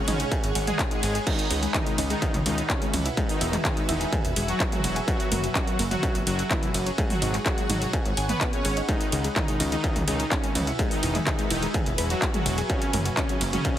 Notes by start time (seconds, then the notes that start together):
Already playing: G#4 C#5 F#5 B5
0.08 G#1 C#3 C#4 D#4 D#5, mid tom, open hi-hat, ride
0.20 G#3 G#4, closed hi-hat
0.31 G#4 G#5, kick, closed hi-hat
0.44 G#1, closed hi-hat
0.55 G#1 G#3 G#4, open hi-hat, ride
0.67 G#3 G#4 G#5, closed hi-hat, mid tom
0.79 D#4 D#5, kick, clap, closed hi-hat
0.91 G#3 D#4 G#4 D#5, closed hi-hat
1.03 G#1, open hi-hat, ride
1.15 G#4 G#5, closed hi-hat
1.27 D#3 G#3 D#4 F#4 G#4, kick, closed hi-hat, crash
1.39 closed hi-hat
1.44 B4 E5
1.50 C#2 D#4 D#5, open hi-hat, ride
1.63 G#3 G#4, closed hi-hat
1.74 D#3 D#4 E4 E5, kick, clap, closed hi-hat, mid tom
1.86 G#3 G#4, closed hi-hat
1.98 C#2 D#4 D#5, open hi-hat, ride
2.07 D#3 G#3 D#4 G#4 G#5, closed hi-hat
2.22 E4 E5, kick, closed hi-hat
2.34 C#2, closed hi-hat, mid tom
2.46 C#2 D#3 G#3 D#4 G#4, open hi-hat, ride
2.58 closed hi-hat
2.70 C#3 C#4 D#4 D#5, kick, clap, closed hi-hat
2.82 G#3 G#4, closed hi-hat
2.94 C#2, mid tom, open hi-hat, ride
3.06 E4 E5, closed hi-hat
3.17 G#3 G#4, kick, closed hi-hat
3.29 D#3 D#4, open hi-hat
3.41 E1 E4 E5, open hi-hat, ride
3.53 G#3 G#4, clap, closed hi-hat, mid tom
3.65 D#3 D#4 G#4 G#5, kick, clap, closed hi-hat
3.77 G#3 G#4, closed hi-hat
3.89 E1 D#3 D#4 E4 E5, open hi-hat, ride
4.01 G#3 G#4, closed hi-hat
4.12 G#4 G#5, kick, closed hi-hat, mid tom
4.25 E1, closed hi-hat
4.36 E1 G#3 G#4, open hi-hat, ride
4.48 F#3 F#4, closed hi-hat
4.60 E4 E5, kick, clap, closed hi-hat
4.72 F#3 G#3 F#4 G#4, closed hi-hat, mid tom
4.84 E1, open hi-hat, ride
4.96 G#4 G#5, closed hi-hat
5.08 F#3 F#4 G#4, kick, closed hi-hat
5.20 closed hi-hat
5.32 F#1 A#3 A#4, mid tom, open hi-hat, ride
5.44 F#3 F#4, closed hi-hat
5.55 F#3 C#4 F#4 C#5, kick, clap, closed hi-hat
5.67 F#3 F#4, closed hi-hat
5.79 F#1 A#3 A#4, open hi-hat, ride
5.91 F#3 F#4 F#5, closed hi-hat, mid tom
6.03 C#4 C#5, kick, closed hi-hat
6.15 F#1, closed hi-hat
6.27 F#1 F#3 F#4, open hi-hat, ride
6.39 closed hi-hat
6.50 E3 A#3 E4 A#4, kick, clap, closed hi-hat, mid tom
6.63 F#3 F#4, closed hi-hat
6.74 F#1, open hi-hat, ride
6.86 C#4 C#5, closed hi-hat
6.98 G#3 G#4, kick, closed hi-hat
7.10 F#3 F#4, mid tom, open hi-hat
7.22 G#1 D#4 D#5, open hi-hat, ride
7.34 G#3 G#4, clap, closed hi-hat
7.46 F#3 F#4 G#4 G#5, kick, clap, closed hi-hat
7.58 G#3 G#4, closed hi-hat
7.69 G#1 F#3 D#4 F#4 D#5 B5, mid tom, open hi-hat, ride
7.82 G#3 G#4, closed hi-hat
7.93 G#4 G#5, kick, closed hi-hat
8.05 G#1, closed hi-hat
8.17 G#1 G#5 G#6, open hi-hat, ride
8.29 B3 B4, closed hi-hat, mid tom
8.41 B3 B4, kick, clap, closed hi-hat
8.53 C#4 G#4 C#5 G#5, closed hi-hat
8.65 G#1 G#4 G#5, open hi-hat, ride
8.77 D#4 D#5, closed hi-hat
8.89 D#3 G#3 D#4 F#4 G#4, kick, closed hi-hat
9.01 B4, closed hi-hat
9.10 C#2 D#4 D#5 G#5, open hi-hat, ride
9.24 G#3 G#4, closed hi-hat
9.35 D#3 D#4 E4 E5, kick, clap, closed hi-hat, mid tom
9.48 G#3 G#4, closed hi-hat
9.60 C#2 D#4 D#5, open hi-hat, ride
9.72 D#3 G#3 D#4 G#4, closed hi-hat
9.84 E4 E5, kick, closed hi-hat
9.96 C#2, closed hi-hat, mid tom
10.08 C#2 D#3 D#4 G#4 G#5, open hi-hat, ride
10.20 closed hi-hat
10.31 C#3 C#4 D#4 D#5, kick, clap, closed hi-hat
10.43 G#3 G#4, closed hi-hat
10.55 C#2, mid tom, open hi-hat, ride
10.67 E4 E5, closed hi-hat
10.79 G#3 G#4, kick, closed hi-hat
10.91 D#3 D#4, open hi-hat
11.03 E1 E4 E5, open hi-hat, ride
11.15 G#3 G#4, clap, closed hi-hat, mid tom
11.27 D#3 D#4 G#4 G#5, kick, clap, closed hi-hat
11.39 G#3 G#4, closed hi-hat
11.50 E1 D#3 D#4 E4 E5, open hi-hat, ride
11.63 G#3 G#4, closed hi-hat
11.74 G#4 G#5, kick, closed hi-hat, mid tom
11.86 E1, closed hi-hat
11.98 E1 B4 B5, open hi-hat, ride
12.10 F#3 F#4, closed hi-hat
12.22 E4 E5, kick, clap, closed hi-hat
12.34 F#3 G#3 F#4 G#4, closed hi-hat, mid tom
12.46 E1, open hi-hat, ride
12.58 G#4 G#5, closed hi-hat
12.70 C#3 F#3 C#4 F#4 G#4, kick, closed hi-hat
12.82 closed hi-hat
12.93 F#1 A#3 A#4, mid tom, open hi-hat, ride
13.01 A#5
13.05 F#3 F#4, closed hi-hat
13.14 C#3 C#4 C#5, kick, clap, closed hi-hat
13.29 F#3 F#4, closed hi-hat
13.41 F#1 A#3 A#4, open hi-hat, ride
13.53 C#3 F#3 C#4 F#4 F#5, closed hi-hat, mid tom
13.65 C#4 C#5, kick, closed hi-hat